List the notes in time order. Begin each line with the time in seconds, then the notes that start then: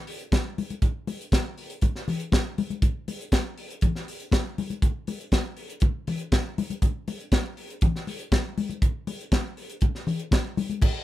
0.07 open hi-hat
0.19 closed hi-hat
0.32 kick, snare, closed hi-hat, high conga
0.58 open hi-hat, high conga
0.70 closed hi-hat, high conga
0.82 kick, closed hi-hat, muted conga
1.07 open hi-hat, muted conga
1.21 closed hi-hat
1.32 kick, snare, closed hi-hat, high conga
1.58 open hi-hat
1.70 closed hi-hat
1.81 kick, closed hi-hat, muted conga
1.96 snare
2.08 open hi-hat, muted conga, low conga
2.20 closed hi-hat
2.32 kick, snare, closed hi-hat, high conga
2.58 open hi-hat, high conga
2.70 closed hi-hat, high conga
2.82 kick, closed hi-hat, muted conga
3.08 open hi-hat, muted conga
3.21 closed hi-hat
3.32 kick, snare, closed hi-hat, high conga
3.58 open hi-hat
3.70 closed hi-hat
3.81 kick, closed hi-hat, muted conga, low conga
3.95 snare
4.08 open hi-hat
4.20 closed hi-hat
4.32 kick, snare, closed hi-hat, high conga
4.58 open hi-hat, high conga
4.70 closed hi-hat, high conga
4.82 kick, closed hi-hat, muted conga
5.07 open hi-hat, muted conga
5.21 closed hi-hat
5.32 kick, snare, closed hi-hat, high conga
5.57 open hi-hat
5.70 closed hi-hat
5.80 kick, closed hi-hat, muted conga
6.07 open hi-hat, muted conga, low conga
6.19 closed hi-hat
6.32 kick, snare, closed hi-hat, high conga
6.58 open hi-hat, high conga
6.70 closed hi-hat, high conga
6.82 kick, closed hi-hat, muted conga
7.08 open hi-hat, muted conga
7.21 closed hi-hat
7.32 kick, snare, closed hi-hat, high conga
7.57 open hi-hat
7.70 closed hi-hat
7.81 kick, closed hi-hat, muted conga, low conga
7.96 snare
8.07 open hi-hat, muted conga
8.19 closed hi-hat
8.32 kick, snare, closed hi-hat, high conga
8.58 open hi-hat, high conga
8.70 closed hi-hat, high conga
8.82 kick, closed hi-hat, muted conga
9.07 open hi-hat, muted conga
9.21 closed hi-hat
9.32 kick, snare, closed hi-hat, high conga
9.57 open hi-hat
9.70 closed hi-hat
9.81 kick, closed hi-hat, muted conga
9.95 snare
10.07 open hi-hat, low conga
10.19 closed hi-hat
10.31 kick, snare, closed hi-hat, high conga
10.57 open hi-hat, high conga
10.69 closed hi-hat, high conga
10.82 kick, crash, muted conga